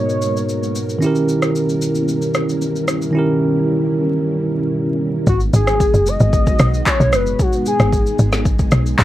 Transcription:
0.00 0.96 G#2 medium
0.00 5.23 B2 medium
0.00 0.98 G#3 medium
0.00 0.97 B3 medium
0.00 0.98 B3 medium
0.00 0.98 D#4 medium
0.00 0.98 F#4 medium
0.00 0.99 F#4 medium
0.00 1.00 A#4 medium
0.00 5.23 A#4 medium
0.00 0.76 C#5 loud
0.09 shaker soft
0.22 shaker medium
0.37 shaker medium
0.49 shaker medium
0.63 shaker medium
0.75 shaker medium
0.89 shaker medium
0.99 3.09 D#3 medium
0.99 5.23 G3 medium
0.99 3.10 C#4 medium
0.99 5.23 C#4 medium
0.99 5.23 E4 medium
0.99 3.11 E4 medium
0.99 shaker medium
1.04 3.12 G4 medium
1.04 3.13 A#4 medium
1.15 shaker soft
1.29 shaker medium
1.42 cross-stick medium
1.42 shaker medium
1.56 shaker medium
1.69 shaker medium
1.82 shaker loud
1.95 shaker medium
2.08 shaker medium
2.22 shaker medium
2.34 cross-stick medium
2.34 shaker medium
2.49 shaker medium
2.62 shaker medium
2.76 shaker medium
2.88 cross-stick medium
2.88 shaker loud
3.02 shaker medium
3.11 5.21 D#3 medium
3.11 5.22 C#4 medium
3.11 5.23 E4 medium
3.17 5.24 G4 medium
3.17 5.25 A#4 medium
5.27 5.50 G#1 loud
5.27 9.04 G#3 medium
5.27 9.04 B3 medium
5.27 9.04 D#4 medium
5.27 7.37 F#4 medium
5.27 5.40 F#4 loud
5.27 kick loud
5.27 shaker medium
5.40 shaker medium
5.53 5.88 G#1 loud
5.53 6.10 G#4 loud
5.53 shaker loud
5.67 cross-stick medium
5.67 shaker medium
5.80 kick loud
5.80 shaker medium
5.94 6.17 F#1 medium
5.94 shaker medium
6.06 6.89 D#5 loud
6.06 shaker loud
6.20 6.54 G#1 medium
6.20 shaker medium
6.33 kick loud
6.33 shaker medium
6.47 kick loud
6.47 shaker medium
6.59 6.82 B1 loud
6.59 cross-stick loud
6.59 shaker medium
6.74 shaker medium
6.86 7.16 C#5 loud
6.86 kick medium
6.86 clap medium
6.86 shaker medium
7.00 7.14 B1 medium
7.00 shaker medium
7.13 7.35 F#1 loud
7.13 7.43 B4 loud
7.13 cross-stick loud
7.13 shaker loud
7.27 shaker medium
7.39 7.67 F#4 loud
7.39 9.04 G#4 medium
7.39 kick loud
7.39 shaker medium
7.53 shaker medium
7.66 8.42 G#4 medium
7.66 shaker loud
7.80 8.13 G#1 loud
7.80 cross-stick loud
7.80 shaker medium
7.92 kick loud
7.92 shaker medium
8.07 shaker medium
8.19 8.64 G#1 loud
8.19 shaker loud
8.32 snare medium
8.32 shaker medium
8.45 kick loud
8.45 shaker medium
8.59 kick loud
8.59 shaker medium
8.71 8.95 B1 loud
8.71 cross-stick loud
8.71 shaker medium
8.86 shaker medium
8.99 9.04 G#1 medium
8.99 kick medium
8.99 clap loud
8.99 shaker medium

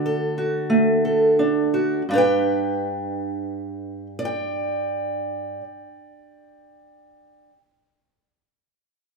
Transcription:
0.00 2.01 D3 medium
0.00 0.68 A3 medium
0.00 1.38 D4 soft
0.00 0.37 F#4 soft
0.00 2.11 F#5 medium
0.06 1.04 A4 soft
0.38 1.73 F#4 soft
0.70 2.01 A3 medium
1.05 2.02 A4 soft
1.39 2.02 D4 medium
1.74 2.01 F#4 soft
2.09 5.59 G2 medium
2.09 5.61 D4 medium
2.13 5.63 G4 soft
2.13 4.18 B4 soft
2.18 4.06 G5 medium
4.19 7.50 D5 medium
4.25 7.56 G5 medium

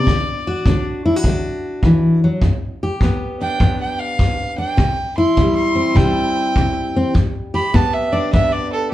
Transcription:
0.00 0.68 D4 medium
0.00 0.83 D5 loud
0.07 0.63 D3 medium
0.07 kick medium
0.47 1.05 F#4 medium
0.66 1.21 D3 medium
0.66 1.25 D4 medium
0.66 kick medium
1.05 1.16 E4 medium
1.16 2.43 F#4 medium
1.24 1.80 D3 medium
1.24 kick medium
1.28 2.41 D4 medium
1.83 2.23 E3 medium
1.83 kick medium
2.24 2.43 F#3 medium
2.42 2.97 G2 medium
2.42 kick medium
2.83 5.17 G4 medium
3.01 3.57 G2 medium
3.01 3.60 B3 medium
3.01 kick medium
3.41 4.57 D4 medium
3.41 3.78 G5 medium
3.60 4.15 G2 medium
3.60 4.76 B3 medium
3.60 kick medium
3.80 4.01 G5 medium
3.99 4.56 F5 medium
4.19 4.74 G2 medium
4.19 kick medium
4.58 4.76 D4 soft
4.58 5.15 G5 medium
4.77 5.33 C3 medium
4.77 kick medium
5.17 7.15 E4 medium
5.17 5.55 C6 medium
5.37 5.92 C3 medium
5.37 5.95 G3 medium
5.37 kick medium
5.55 5.98 C6 medium
5.75 6.94 C4 medium
5.95 6.50 C3 medium
5.95 7.74 G3 medium
5.95 7.11 G5 loud
5.95 kick medium
6.56 7.11 C3 medium
6.56 kick medium
6.96 7.13 C4 medium
7.14 7.70 G2 medium
7.14 kick medium
7.54 8.94 G4 medium
7.54 7.77 B5 medium
7.74 8.29 G2 medium
7.74 8.33 B3 medium
7.74 7.95 A5 medium
7.74 kick medium
7.93 8.14 E5 medium
8.13 8.94 D4 medium
8.13 8.32 D5 medium
8.33 8.88 G2 medium
8.33 8.94 B3 medium
8.33 8.53 E5 medium
8.33 kick medium
8.52 8.71 D5 medium
8.72 8.90 A4 medium
8.90 8.94 G4 loud

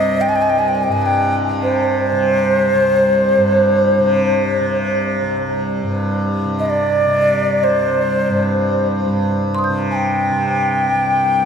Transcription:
0.00 0.27 C2 soft
0.00 0.88 G2 soft
0.00 1.52 C3 medium
0.00 0.23 D#5 medium
0.21 0.30 G5 medium
0.27 2.74 C2 medium
0.27 0.37 G#5 medium
0.36 0.43 G5 medium
0.42 0.51 G#5 medium
0.50 0.60 G5 medium
0.59 0.70 G#5 medium
0.68 0.76 G5 medium
0.75 0.85 G#5 medium
0.84 0.94 G5 medium
0.89 3.37 G2 soft
0.89 1.02 G#5 medium
1.02 1.07 G#5 medium
1.06 1.35 G5 medium
1.52 2.12 C3 soft
1.63 5.00 C5 medium
2.12 4.00 C3 medium
2.74 5.21 C2 medium
3.37 5.82 G2 medium
4.00 4.60 C3 medium
4.60 6.45 C3 medium
5.21 7.69 C2 soft
5.83 8.29 G2 soft
6.45 7.07 C3 soft
6.59 6.66 D#5 medium
6.66 7.65 D5 medium
6.66 6.71 D#5 medium
7.07 9.69 C3 medium
7.64 8.87 C5 medium
7.69 10.91 C2 soft
8.29 9.05 G2 soft
9.05 11.45 G2 soft
9.54 11.45 C6 medium
9.54 11.45 D#6 soft
9.64 11.45 G6 soft
9.69 10.31 C3 medium
9.91 9.96 G#5 medium
9.95 11.45 G5 medium
10.31 11.45 C3 soft
10.92 11.45 C2 soft

